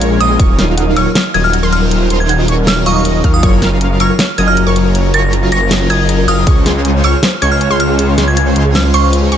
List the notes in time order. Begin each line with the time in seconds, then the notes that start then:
Already playing: A#1 G#3 C#4 F4 A#4 C#5 C#6, downlifter
0.01 F5, closed hi-hat
0.11 G#4
0.20 A#1 G#3 C#4 F4 A#4 D#5 D#6, closed hi-hat
0.30 G#4
0.39 D#1 F#3 D#4 F4 A#4 C#5 C#6, kick, closed hi-hat
0.58 D#1 F#3 D#4 F4 A#4 F5 F6, snare, closed hi-hat
0.77 F#5, closed hi-hat
0.87 D#5
0.96 D#1 F#3 D#4 F4 A#4 C#5 C#6 F6, closed hi-hat
1.06 A#4
1.15 C#5, snare, closed hi-hat
1.34 D#1 F#3 D#4 F4 A#4 D#5 D#6 G#6, closed hi-hat
1.44 F6
1.53 F#5, closed hi-hat
1.63 D#1 F#3 D#4 F4 A#4 C5 C6
1.72 F6, closed hi-hat
1.82 A#4
1.91 A#4, closed hi-hat
2.10 D#1 F#3 D#4 F4 A#4 C5 C6, closed hi-hat
2.20 G#6
2.29 F#5 G#6, closed hi-hat
2.39 D#5
2.48 D#1 F#3 D#4 F4 A#4 C#5 C#6, closed hi-hat
2.57 A#4
2.67 C#5 F6, snare, closed hi-hat
2.86 D#1 F#3 D#4 F4 A#4 D#5 F5 C#6 D#6, closed hi-hat
2.96 F5 C#6
3.05 A#5, closed hi-hat
3.15 D#5
3.24 D#2 F#3 D#4 F4 A#4 F5 F6, kick, closed hi-hat
3.34 F5 D#6
3.43 F#1 F#3 C#4 F4 A#4 C#5 C#6, kick, closed hi-hat
3.62 F#1 F#3 C#4 F4 A#4 F5 F6, snare, closed hi-hat
3.81 A#5, closed hi-hat
3.91 F5
4.00 F#1 F#3 C#4 F4 A#4 C#5 C#6 F6, closed hi-hat
4.10 A#4
4.19 C#5, snare, closed hi-hat
4.38 F#1 F#3 C#4 F4 A#4 D#5 D#6 G#6, closed hi-hat
4.48 F6
4.57 A#5, closed hi-hat
4.66 F#1 F#3 C#4 F4 A#4 C#5 C#6
4.76 closed hi-hat
4.86 A#4
4.95 A#4, closed hi-hat
5.14 F#1 F#3 C#4 F4 A#4 C#5 C#6 A#6, closed hi-hat
5.33 A#5, closed hi-hat
5.43 F5
5.52 F#1 F#3 C#4 F4 C#5 C#6 A#6, closed hi-hat
5.62 A#4
5.71 C#5, snare, closed hi-hat
5.90 F#1 F#3 C#4 F4 A#4 D#5 D#6 G#6, closed hi-hat
6.09 A#5, closed hi-hat
6.18 A#4
6.28 F#1 F#3 C#4 F4 A#4 F5 D#6 F6, closed hi-hat
6.38 A#4
6.47 C#2 G#3 C#4 F4 G#4 C5 C#5 C#6, kick, closed hi-hat
6.66 C#2 G#3 C#4 F4 G#4 C5 C#5 C6, snare, closed hi-hat
6.85 G#5, closed hi-hat
6.94 C#5
7.04 C#2 G#3 C#4 F4 C5 C#5 C#6 F6, closed hi-hat
7.13 G#4
7.23 C5, snare, closed hi-hat
7.42 C#2 G#3 C#4 F4 G#4 C5 C#5 C#6 G#6, closed hi-hat
7.52 F6
7.61 G#5, closed hi-hat
7.70 C#2 G#3 C#4 F4 G#4 C5 C#5 C6
7.80 F6, closed hi-hat
7.89 G#4
7.99 G#4, closed hi-hat
8.18 C#2 G#3 C#4 F4 G#4 C5 C#5 C6, snare, closed hi-hat
8.28 G#6
8.37 G#5 G#6, closed hi-hat
8.46 C#5
8.56 C#2 G#3 C#4 F4 C5 C#5 C6, closed hi-hat
8.65 G#4
8.75 C5 F6, snare, closed hi-hat
8.94 C#2 G#3 C#4 F4 C5 C#5 C6 C#6, closed hi-hat
9.03 C#6
9.13 F5, closed hi-hat
9.22 G#4
9.32 C#2 G#3 C#4 F4 G#4 C5 C#5 C#6, closed hi-hat